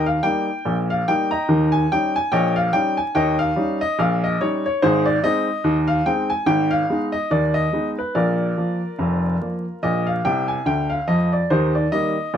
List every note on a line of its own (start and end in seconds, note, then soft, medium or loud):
0.00 0.18 D#2 medium
0.00 0.18 D#3 medium
0.06 0.24 F5 medium
0.23 0.47 G3 medium
0.23 0.47 A#3 soft
0.23 0.47 D#4 soft
0.23 0.76 G5 medium
0.65 1.01 A#1 medium
0.65 1.01 A#2 medium
0.90 1.08 F5 medium
1.08 1.31 G3 soft
1.08 1.31 A#3 soft
1.08 1.31 D#4 medium
1.08 1.30 G5 medium
1.31 1.71 D#5 medium
1.31 1.70 G5 medium
1.31 1.71 A#5 medium
1.49 1.84 D#2 medium
1.49 1.84 D#3 medium
1.72 1.90 G#5 medium
1.92 2.15 G3 soft
1.92 2.15 C#4 soft
1.92 2.15 D#4 medium
1.92 2.15 G5 medium
2.16 2.33 G#5 medium
2.32 2.68 A#1 medium
2.32 2.68 A#2 medium
2.32 2.55 C#5 medium
2.32 2.55 D#5 medium
2.32 2.56 G5 medium
2.56 2.74 F5 medium
2.73 2.96 G3 medium
2.73 2.96 C#4 medium
2.73 2.97 D#4 soft
2.73 2.97 G5 medium
2.97 3.15 G#5 medium
3.15 3.51 D#2 medium
3.15 3.51 D#3 medium
3.15 3.38 C#5 medium
3.15 3.38 D#5 medium
3.15 3.39 G5 medium
3.39 3.78 F5 medium
3.56 3.79 G3 medium
3.56 3.79 C#4 medium
3.56 3.80 D#4 medium
3.81 3.99 D#5 medium
3.99 4.34 A#1 medium
3.99 4.34 A#2 medium
3.99 4.23 F5 medium
4.24 4.41 D#5 medium
4.41 4.63 G3 medium
4.41 4.64 C#4 soft
4.41 4.64 D#4 medium
4.41 4.64 C#5 medium
4.66 4.83 C#5 medium
4.82 5.18 G#1 medium
4.82 5.18 G#2 medium
4.82 5.05 D#4 medium
4.82 5.05 G#4 medium
4.82 5.06 C5 medium
5.06 5.23 D5 medium
5.24 5.46 G#3 medium
5.24 5.47 C4 medium
5.24 5.47 D#4 medium
5.24 5.76 D#5 loud
5.64 6.00 D#2 medium
5.64 6.00 D#3 medium
5.87 6.06 F5 medium
6.06 6.29 G#3 soft
6.06 6.29 C4 soft
6.06 6.30 D#4 medium
6.06 6.30 G5 medium
6.30 6.48 G#5 medium
6.46 6.82 G#1 medium
6.46 6.82 G#2 medium
6.46 6.71 G5 medium
6.71 7.04 F5 medium
6.89 7.13 G#3 soft
6.89 7.12 B3 soft
6.89 7.13 D#4 medium
7.12 7.31 D#5 medium
7.31 7.66 D#2 medium
7.31 7.66 D#3 medium
7.31 7.55 D5 medium
7.54 7.88 D#5 medium
7.73 7.96 G#3 soft
7.73 7.96 B3 soft
7.73 7.96 D#4 soft
7.99 8.16 B4 medium
8.15 8.50 A#1 medium
8.15 8.51 A#2 medium
8.15 9.79 F4 medium
8.15 9.79 A#4 medium
8.15 9.49 D5 medium
8.58 8.80 F3 soft
8.58 8.80 A#3 soft
8.98 9.34 F1 medium
8.98 9.34 F2 medium
9.41 9.64 F3 soft
9.41 9.64 A#3 soft
9.83 10.18 A#1 medium
9.83 10.18 A#2 medium
9.83 10.06 D#5 medium
10.06 10.24 F5 medium
10.25 10.56 C2 medium
10.25 10.56 C3 medium
10.25 10.48 G5 medium
10.48 10.66 G#5 medium
10.66 10.97 D2 medium
10.66 10.97 D3 medium
10.66 10.90 G5 medium
10.90 11.07 F5 medium
11.08 11.39 F2 medium
11.08 11.39 F3 medium
11.08 11.31 D#5 medium
11.33 11.50 D5 medium
11.50 11.85 D#2 medium
11.50 11.86 D#3 medium
11.50 11.73 D#4 medium
11.50 11.73 G4 medium
11.50 11.74 C5 medium
11.75 11.92 D5 medium
11.92 12.15 D#3 soft
11.92 12.15 G3 medium
11.92 12.16 A#3 medium
11.92 12.37 D#5 medium
12.34 12.37 A#1 medium
12.34 12.37 A#2 medium